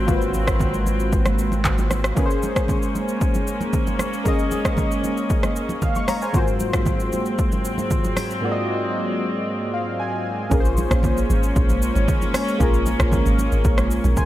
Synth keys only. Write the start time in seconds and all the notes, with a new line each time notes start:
Already playing: F#4 C5
0.06 A#3 F4 F#4
0.11 B4
0.17 C5
2.15 A#3 C#4 G#4
2.19 B4
2.26 C5
4.24 A#3 C#4 G#4
4.28 D#5
5.83 F5
5.96 F5 C#6
6.08 C#5 A#5
6.22 C5 G#5
6.33 G#2 A#3 F4 F#4
6.37 C5
8.41 G#2 A#3 F4 F#4
8.45 D5
8.52 D#5
9.74 F5
10.00 G#5
10.50 A#3 C#4 F4 G#4
10.54 A#4
10.60 C5
12.59 A#3 C#4 F4 G#4
12.63 A#4
14.17 C5 G#5